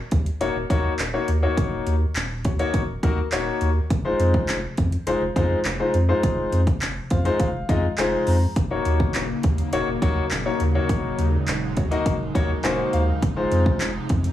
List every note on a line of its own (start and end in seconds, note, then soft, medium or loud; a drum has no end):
0.11 0.31 D#2 loud
0.11 kick loud
0.11 closed hi-hat medium
0.26 closed hi-hat medium
0.40 0.50 D#1 loud
0.40 0.55 A#3 loud
0.40 0.55 D#4 medium
0.40 0.55 F#4 medium
0.40 0.55 C#5 loud
0.40 closed hi-hat medium
0.55 0.65 D#1 loud
0.70 0.89 D#2 loud
0.70 0.91 A#3 loud
0.70 0.92 D#4 loud
0.70 0.92 F#4 loud
0.70 0.92 C#5 loud
0.70 kick loud
0.70 closed hi-hat medium
0.99 1.18 D#1 loud
0.99 clap loud
0.99 closed hi-hat loud
1.13 1.28 A#3 medium
1.13 1.28 D#4 medium
1.13 1.28 F#4 medium
1.13 1.28 C#5 medium
1.28 1.47 D#2 loud
1.28 closed hi-hat medium
1.42 1.93 A#3 medium
1.42 1.93 D#4 medium
1.42 1.93 F#4 medium
1.42 1.93 C#5 loud
1.57 1.67 D#1 loud
1.57 kick loud
1.57 closed hi-hat loud
1.72 1.81 D#1 loud
1.86 2.05 D#2 loud
1.86 closed hi-hat medium
2.16 2.46 D#1 loud
2.16 clap loud
2.16 closed hi-hat medium
2.44 2.64 D#2 loud
2.44 2.52 F#4 medium
2.44 2.52 C#5 medium
2.44 kick loud
2.44 closed hi-hat medium
2.59 2.81 A#3 loud
2.59 2.81 D#4 loud
2.59 2.81 F#4 medium
2.59 2.81 C#5 loud
2.59 closed hi-hat medium
2.74 2.83 D#1 loud
2.74 kick loud
2.74 closed hi-hat loud
2.88 2.98 D#1 loud
3.03 3.22 D#2 loud
3.03 3.17 A#3 loud
3.03 3.17 D#4 medium
3.03 3.18 F#4 loud
3.03 3.18 A#4 loud
3.03 kick loud
3.03 closed hi-hat medium
3.32 3.51 D#1 loud
3.32 3.68 A#3 medium
3.32 3.68 D#4 medium
3.32 3.68 F#4 medium
3.32 3.68 C#5 loud
3.32 clap loud
3.32 closed hi-hat loud
3.61 3.80 D#2 loud
3.61 closed hi-hat medium
3.90 4.00 F1 loud
3.90 kick loud
3.90 closed hi-hat loud
4.05 4.14 F1 loud
4.05 4.55 G#3 medium
4.05 4.55 D#4 medium
4.05 4.56 F4 medium
4.05 4.56 C5 loud
4.19 4.38 F2 loud
4.19 closed hi-hat medium
4.34 kick loud
4.48 4.67 F1 loud
4.48 clap loud
4.48 closed hi-hat medium
4.77 4.97 F2 loud
4.77 kick loud
4.77 closed hi-hat medium
4.92 closed hi-hat medium
5.07 5.16 F1 loud
5.07 5.21 G#3 loud
5.07 5.21 D#4 medium
5.07 5.21 F4 medium
5.07 5.21 C5 loud
5.07 closed hi-hat loud
5.21 5.31 F1 medium
5.36 5.55 F2 loud
5.36 5.57 G#3 loud
5.36 5.58 D#4 loud
5.36 5.58 F4 medium
5.36 5.58 C5 loud
5.36 kick loud
5.36 closed hi-hat medium
5.64 5.84 F1 loud
5.64 clap loud
5.64 closed hi-hat medium
5.80 5.94 G#3 medium
5.80 5.94 D#4 medium
5.80 5.94 F4 medium
5.80 5.94 C5 loud
5.94 6.13 F2 loud
5.94 closed hi-hat medium
6.09 6.59 G#3 medium
6.09 6.59 D#4 medium
6.09 6.59 F4 medium
6.09 6.59 C5 loud
6.23 6.33 F1 loud
6.23 kick loud
6.23 closed hi-hat loud
6.38 6.47 F1 loud
6.52 6.71 F2 loud
6.52 closed hi-hat medium
6.67 kick loud
6.67 closed hi-hat medium
6.82 7.01 F1 loud
6.82 clap loud
6.82 closed hi-hat medium
7.10 7.30 F2 loud
7.10 7.18 F4 medium
7.10 7.18 C5 medium
7.10 7.24 F5 medium
7.10 kick loud
7.10 closed hi-hat medium
7.25 7.47 G#3 loud
7.25 7.47 D#4 medium
7.25 7.47 F4 medium
7.25 7.47 C5 loud
7.25 7.39 D#5 medium
7.25 closed hi-hat medium
7.40 7.49 F1 loud
7.40 7.94 F5 medium
7.40 kick loud
7.40 closed hi-hat loud
7.54 7.64 F1 loud
7.69 7.88 F2 loud
7.69 7.83 G#3 loud
7.69 7.84 D#4 medium
7.69 7.84 F4 medium
7.69 7.84 D#5 loud
7.69 kick loud
7.69 closed hi-hat medium
7.98 8.17 F1 loud
7.98 8.34 G#3 loud
7.98 8.34 D#4 medium
7.98 8.34 F4 medium
7.98 8.34 C5 loud
7.98 8.25 G#5 medium
7.98 clap loud
7.98 closed hi-hat loud
8.27 8.46 F2 loud
8.27 8.54 A#5 medium
8.27 open hi-hat medium
8.56 8.66 D#1 loud
8.56 13.18 C#3 medium
8.56 13.19 F#3 medium
8.56 10.87 A#3 medium
8.56 14.33 D#4 medium
8.56 kick loud
8.56 closed hi-hat loud
8.71 8.80 D#1 loud
8.71 9.21 A#3 medium
8.71 9.21 D#4 medium
8.71 9.21 F#4 medium
8.71 9.22 C#5 loud
8.85 9.04 D#2 loud
8.85 closed hi-hat medium
9.00 kick loud
9.14 9.34 D#1 loud
9.14 clap loud
9.14 closed hi-hat medium
9.43 9.63 D#2 loud
9.43 kick loud
9.43 closed hi-hat medium
9.58 closed hi-hat medium
9.73 9.82 D#1 loud
9.73 9.87 A#3 loud
9.73 9.87 D#4 medium
9.73 9.87 F#4 medium
9.73 9.87 C#5 loud
9.73 closed hi-hat loud
9.87 9.97 D#1 loud
10.02 10.21 D#2 loud
10.02 10.24 A#3 loud
10.02 10.24 D#4 loud
10.02 10.24 F#4 loud
10.02 10.24 C#5 loud
10.02 kick loud
10.02 closed hi-hat medium
10.31 10.50 D#1 loud
10.31 clap loud
10.31 closed hi-hat medium
10.45 10.60 A#3 medium
10.45 10.60 D#4 medium
10.45 10.60 F#4 medium
10.45 10.60 C#5 loud
10.60 10.79 D#2 loud
10.60 closed hi-hat medium
10.75 11.25 A#3 medium
10.75 11.25 D#4 medium
10.75 11.25 F#4 medium
10.75 11.26 C#5 loud
10.89 10.99 D#1 loud
10.89 13.20 G#3 medium
10.89 kick loud
10.89 closed hi-hat loud
11.04 11.13 D#1 loud
11.18 11.37 D#2 loud
11.18 closed hi-hat medium
11.48 11.79 D#1 loud
11.48 clap loud
11.48 closed hi-hat medium
11.77 11.96 D#2 loud
11.77 11.84 F#4 medium
11.77 11.84 C#5 medium
11.77 kick medium
11.77 closed hi-hat medium
11.91 12.13 A#3 loud
11.91 12.13 D#4 medium
11.91 12.13 F#4 loud
11.91 12.13 D#5 loud
11.91 closed hi-hat medium
12.06 12.15 D#1 loud
12.06 kick loud
12.06 closed hi-hat loud
12.20 12.30 D#1 medium
12.35 12.54 D#2 loud
12.35 12.49 A#3 loud
12.35 12.49 D#4 loud
12.35 12.49 F#4 loud
12.35 12.50 C#5 loud
12.35 12.62 A#5 medium
12.35 kick loud
12.35 closed hi-hat medium
12.63 12.83 D#1 loud
12.63 13.00 A#3 loud
12.63 13.00 D#4 medium
12.63 13.00 F#4 medium
12.63 13.00 C5 loud
12.63 12.77 G#5 medium
12.63 clap loud
12.63 closed hi-hat medium
12.78 12.92 F#5 medium
12.93 13.12 D#2 loud
12.93 13.20 F5 medium
12.93 closed hi-hat medium
13.22 13.32 F1 loud
13.22 14.33 C3 medium
13.22 14.33 F3 medium
13.22 14.33 G#3 medium
13.22 kick loud
13.22 closed hi-hat loud
13.36 13.46 F1 loud
13.36 13.87 G#3 medium
13.36 13.87 D#4 medium
13.36 13.87 F4 medium
13.36 13.87 C5 loud
13.51 13.70 F2 loud
13.51 closed hi-hat medium
13.66 kick loud
13.80 13.99 F1 loud
13.80 clap loud
13.80 closed hi-hat medium
14.09 14.29 F2 loud
14.09 kick loud
14.09 closed hi-hat medium
14.24 closed hi-hat medium